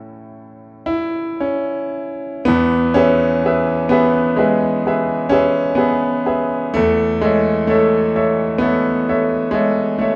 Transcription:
0.00 2.40 A2 medium
0.00 2.42 A3 medium
0.00 1.39 C#4 soft
0.00 0.85 E4 medium
0.00 0.88 A4 medium
0.86 1.41 E4 medium
1.40 2.46 C#4 medium
2.45 2.95 E2 medium
2.45 2.95 B3 loud
2.94 3.90 C#4 loud
2.94 3.40 G#4 medium
2.94 3.40 B4 soft
2.94 3.40 E5 medium
3.45 3.88 G#4 medium
3.45 3.88 B4 medium
3.45 3.88 E5 medium
3.89 4.38 B3 medium
3.89 4.35 G#4 medium
3.89 4.35 B4 medium
3.89 4.35 E5 medium
4.36 5.30 G#3 medium
4.36 4.81 G#4 soft
4.36 4.82 B4 medium
4.36 4.82 E5 medium
4.87 5.28 G#4 medium
4.87 5.28 B4 medium
4.87 5.28 E5 medium
5.29 5.77 C#4 loud
5.29 5.74 G#4 medium
5.29 5.74 B4 medium
5.29 5.74 E5 medium
5.75 6.74 B3 medium
5.75 6.22 G#4 medium
5.75 6.22 B4 soft
5.75 6.22 E5 medium
6.26 6.71 G#4 medium
6.26 6.71 B4 medium
6.26 6.71 E5 medium
6.74 7.22 E2 medium
6.74 7.23 A3 loud
7.21 7.69 G#3 medium
7.21 7.66 A4 soft
7.21 7.66 C#5 soft
7.21 7.67 E5 medium
7.67 8.60 A3 medium
7.67 8.11 A4 medium
7.67 8.11 C#5 medium
7.67 8.11 E5 medium
8.15 8.57 A4 medium
8.15 8.58 C#5 medium
8.15 8.58 E5 medium
8.58 9.53 B3 medium
8.58 9.04 A4 medium
8.58 9.04 C#5 medium
8.58 9.04 E5 medium
9.09 9.50 A4 medium
9.09 9.51 C#5 medium
9.09 9.51 E5 medium
9.51 9.99 G#3 medium
9.51 9.96 A4 medium
9.51 9.96 C#5 medium
9.51 9.96 E5 medium
9.98 10.16 A3 medium
9.98 10.16 A4 soft
9.98 10.16 C#5 soft
9.98 10.16 E5 medium

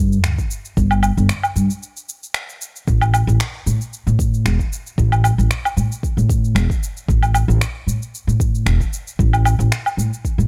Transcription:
0.00 0.24 G2 medium
0.12 cabasa soft
0.24 0.35 D2 medium
0.24 finger snap loud
0.24 cabasa soft
0.39 kick medium
0.39 cabasa soft
0.51 cabasa medium
0.65 cabasa soft
0.77 1.12 G1 loud
0.77 kick loud
0.77 cabasa soft
0.91 cabasa soft
0.91 low woodblock medium
1.03 cabasa medium
1.03 low woodblock medium
1.17 1.27 G1 medium
1.17 cabasa soft
1.29 finger snap loud
1.29 cabasa soft
1.43 cabasa soft
1.43 low woodblock medium
1.56 1.66 G2 medium
1.56 cabasa medium
1.70 cabasa soft
1.83 cabasa soft
1.97 cabasa soft
2.09 cabasa medium
2.23 cabasa soft
2.34 finger snap loud
2.34 cabasa soft
2.49 cabasa soft
2.62 cabasa medium
2.76 cabasa soft
2.88 3.22 A1 loud
2.88 kick loud
2.88 cabasa soft
3.01 cabasa soft
3.01 low woodblock medium
3.14 cabasa medium
3.14 low woodblock medium
3.27 3.37 A1 loud
3.27 cabasa soft
3.40 finger snap loud
3.40 cabasa soft
3.66 3.77 A2 medium
3.66 cabasa medium
3.81 cabasa soft
3.93 cabasa soft
4.07 4.47 A2 medium
4.07 cabasa soft
4.19 kick loud
4.19 cabasa medium
4.34 cabasa soft
4.45 4.56 E1 medium
4.45 finger snap loud
4.45 cabasa soft
4.59 kick medium
4.59 cabasa soft
4.73 cabasa medium
4.87 cabasa soft
4.98 5.33 A1 loud
4.98 kick loud
4.98 cabasa soft
5.12 cabasa soft
5.12 low woodblock medium
5.24 cabasa medium
5.24 low woodblock medium
5.38 5.48 A1 medium
5.38 cabasa soft
5.51 finger snap loud
5.51 cabasa soft
5.65 cabasa soft
5.65 low woodblock medium
5.77 5.88 A2 medium
5.77 cabasa medium
5.92 cabasa soft
6.03 kick medium
6.03 cabasa soft
6.17 6.56 A2 medium
6.17 cabasa soft
6.30 kick loud
6.30 cabasa medium
6.45 cabasa soft
6.55 6.66 E1 medium
6.55 finger snap loud
6.55 cabasa soft
6.70 kick loud
6.70 cabasa soft
6.83 cabasa medium
6.97 cabasa soft
7.08 7.43 A1 medium
7.08 kick loud
7.08 cabasa soft
7.23 cabasa soft
7.23 low woodblock medium
7.34 cabasa medium
7.34 low woodblock medium
7.48 7.58 A1 loud
7.48 cabasa soft
7.61 finger snap loud
7.61 cabasa soft
7.87 7.98 A2 medium
7.87 cabasa medium
8.02 cabasa soft
8.15 cabasa soft
8.27 8.67 A2 medium
8.27 cabasa soft
8.40 kick loud
8.40 cabasa medium
8.55 cabasa soft
8.66 8.77 E1 medium
8.66 finger snap loud
8.66 cabasa soft
8.81 kick medium
8.81 cabasa soft
8.93 cabasa medium
9.07 cabasa soft
9.19 9.54 A1 loud
9.19 kick loud
9.19 cabasa soft
9.33 cabasa soft
9.33 low woodblock medium
9.45 cabasa medium
9.45 low woodblock medium
9.59 9.68 A1 medium
9.59 cabasa soft
9.72 finger snap loud
9.72 cabasa soft
9.86 cabasa soft
9.86 low woodblock medium
9.97 10.08 A2 medium
9.97 cabasa medium
10.13 cabasa soft
10.25 kick medium
10.25 cabasa soft
10.38 10.47 A2 medium
10.38 cabasa soft

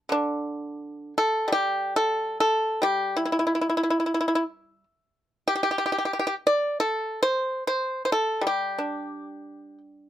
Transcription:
0.09 2.17 D3 medium
0.09 1.13 D4 medium
1.18 1.49 A4 medium
1.48 2.80 G3 medium
1.52 1.93 G4 medium
1.96 2.37 A4 medium
2.40 2.82 A4 medium
2.82 4.83 G3 medium
2.82 3.15 G4 medium
3.16 3.24 E4 medium
3.25 3.31 E4 medium
3.32 3.38 E4 medium
3.39 3.45 E4 soft
3.47 3.54 E4 soft
3.55 3.60 E4 soft
3.61 3.68 E4 medium
3.69 3.76 E4 soft
3.77 3.82 E4 medium
3.83 3.89 E4 soft
3.90 3.98 E4 medium
4.00 4.05 E4 soft
4.06 4.13 E4 soft
4.14 4.19 E4 soft
4.21 4.27 E4 medium
4.28 4.34 E4 medium
4.35 4.42 E4 medium
5.48 5.54 G4 medium
5.55 5.62 G4 medium
5.63 5.70 G4 medium
5.71 5.77 G4 medium
5.78 5.84 G4 medium
5.86 5.91 G4 medium
5.92 5.97 G4 medium
5.98 6.04 G4 medium
6.05 6.12 G4 medium
6.13 6.18 G4 medium
6.19 6.26 G4 medium
6.27 6.33 G4 medium
6.47 6.77 D5 loud
6.80 7.20 A4 loud
7.23 7.63 C5 medium
7.67 8.01 C5 medium
8.05 8.11 C5 medium
8.12 8.43 A4 medium
8.41 10.10 G3 medium
8.47 9.78 G4 medium
8.78 10.10 D4 soft

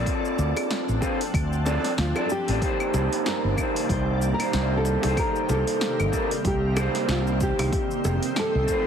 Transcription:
0.00 0.98 C4 medium
0.00 0.98 D4 medium
0.00 0.99 F4 medium
0.00 1.00 A4 medium
0.00 1.00 D5 medium
0.06 2.59 F3 medium
0.06 2.59 C4 medium
0.06 2.59 D4 medium
0.06 kick loud
0.06 open hi-hat soft
0.06 shaker soft
0.25 shaker soft
0.38 0.52 D2 loud
0.38 shaker medium
0.56 open hi-hat medium
0.56 high bongo medium
0.56 claves medium
0.56 shaker soft
0.71 snare loud
0.71 open hi-hat soft
0.71 shaker soft
0.89 0.98 A1 medium
0.89 shaker soft
1.01 1.18 C4 medium
1.01 1.18 D4 medium
1.01 1.19 F4 medium
1.01 1.19 A4 medium
1.01 1.19 C5 medium
1.01 kick medium
1.01 high bongo medium
1.01 shaker medium
1.21 open hi-hat medium
1.21 shaker soft
1.34 1.76 D2 medium
1.34 kick loud
1.34 open hi-hat soft
1.34 claves medium
1.34 shaker soft
1.53 shaker soft
1.65 1.90 C4 medium
1.65 1.90 D4 medium
1.65 1.90 F4 medium
1.65 1.91 A4 medium
1.65 1.91 D5 loud
1.65 high bongo medium
1.65 shaker medium
1.84 snare soft
1.84 open hi-hat medium
1.84 shaker soft
1.98 2.11 D2 medium
1.98 2.26 F4 medium
1.98 snare loud
1.98 open hi-hat soft
1.98 shaker soft
2.16 2.28 C4 medium
2.16 2.29 D4 medium
2.16 2.29 F4 medium
2.16 2.29 A4 medium
2.16 2.30 D5 loud
2.16 high bongo medium
2.16 claves medium
2.16 shaker soft
2.25 2.31 A4 medium
2.30 3.28 G4 loud
2.30 shaker medium
2.48 2.58 A1 loud
2.48 2.60 C4 medium
2.48 2.60 D4 medium
2.48 2.61 F4 medium
2.48 2.61 A4 medium
2.48 2.61 D5 loud
2.48 open hi-hat medium
2.48 shaker soft
2.60 7.69 C3 medium
2.60 8.87 D#3 medium
2.60 7.69 G3 medium
2.60 3.51 A#3 loud
2.60 7.69 A#3 medium
2.60 3.52 D4 medium
2.60 3.53 D#4 loud
2.60 5.15 D5 medium
2.60 kick loud
2.60 open hi-hat soft
2.60 shaker soft
2.64 3.53 G4 loud
2.64 3.54 C5 loud
2.80 claves medium
2.80 shaker soft
2.94 3.07 C2 loud
2.94 high bongo medium
2.94 shaker medium
3.13 open hi-hat medium
3.13 shaker soft
3.26 3.91 A#4 loud
3.26 snare loud
3.26 open hi-hat soft
3.26 shaker soft
3.44 3.54 G1 medium
3.56 4.35 A#3 medium
3.56 4.35 D4 medium
3.56 4.36 D#4 medium
3.56 kick medium
3.56 claves medium
3.56 shaker medium
3.60 4.37 G4 medium
3.60 4.37 C5 medium
3.76 open hi-hat medium
3.76 shaker soft
3.89 4.32 C2 medium
3.89 4.30 C5 loud
3.89 kick loud
3.89 open hi-hat soft
3.89 shaker soft
4.22 shaker medium
4.34 4.73 A#4 medium
4.39 4.99 A#3 medium
4.39 4.99 D4 medium
4.39 4.99 D#4 medium
4.39 5.00 G4 medium
4.39 5.00 C5 medium
4.39 open hi-hat medium
4.39 claves medium
4.39 shaker soft
4.53 4.96 C2 loud
4.53 snare loud
4.53 open hi-hat soft
4.53 shaker soft
4.77 5.19 A4 medium
4.85 high bongo medium
4.85 shaker medium
5.01 5.14 C2 medium
5.01 6.08 A#3 medium
5.01 6.09 D4 medium
5.01 6.10 D#4 medium
5.01 open hi-hat medium
5.01 high bongo medium
5.01 shaker soft
5.05 6.10 G4 medium
5.05 6.11 C5 medium
5.17 8.87 C4 medium
5.17 5.51 A#4 loud
5.17 kick loud
5.17 open hi-hat soft
5.17 claves medium
5.17 shaker soft
5.36 shaker soft
5.49 5.62 C2 loud
5.49 6.49 A4 medium
5.49 high bongo medium
5.49 shaker medium
5.67 open hi-hat medium
5.67 shaker soft
5.81 snare loud
5.81 open hi-hat soft
5.81 shaker soft
6.00 6.09 G1 medium
6.00 claves medium
6.00 shaker soft
6.12 6.29 A#3 medium
6.12 6.29 D4 medium
6.12 6.29 D#4 medium
6.12 6.30 G4 medium
6.12 6.30 A#4 loud
6.12 kick medium
6.12 shaker medium
6.31 open hi-hat medium
6.31 shaker soft
6.45 6.87 C2 medium
6.45 7.06 G4 medium
6.45 kick loud
6.45 open hi-hat soft
6.45 shaker soft
6.75 7.70 A#3 medium
6.75 7.70 D4 medium
6.75 7.71 D#4 medium
6.75 7.72 G4 medium
6.75 high bongo loud
6.75 claves medium
6.75 shaker medium
6.80 7.72 C5 medium
6.95 snare soft
6.95 open hi-hat medium
6.95 shaker soft
7.08 7.51 C2 loud
7.08 7.19 F4 medium
7.08 snare loud
7.08 open hi-hat soft
7.08 shaker soft
7.27 shaker soft
7.41 8.40 G4 loud
7.41 kick loud
7.41 shaker medium
7.59 7.69 C2 medium
7.59 open hi-hat medium
7.59 high bongo medium
7.59 claves medium
7.59 shaker soft
7.72 8.87 F3 medium
7.72 8.87 G4 medium
7.72 8.87 A5 loud
7.72 kick loud
7.72 open hi-hat soft
7.72 shaker soft
7.91 shaker soft
8.04 8.18 F1 loud
8.04 high bongo medium
8.04 shaker medium
8.23 open hi-hat medium
8.23 shaker soft
8.36 8.87 A4 loud
8.36 snare loud
8.36 open hi-hat soft
8.36 claves medium
8.36 shaker soft
8.55 8.65 C2 medium
8.66 8.87 A3 medium
8.66 8.87 C4 medium
8.66 8.87 D#4 medium
8.66 8.87 F4 medium
8.66 kick medium
8.66 shaker medium
8.71 8.87 C5 medium

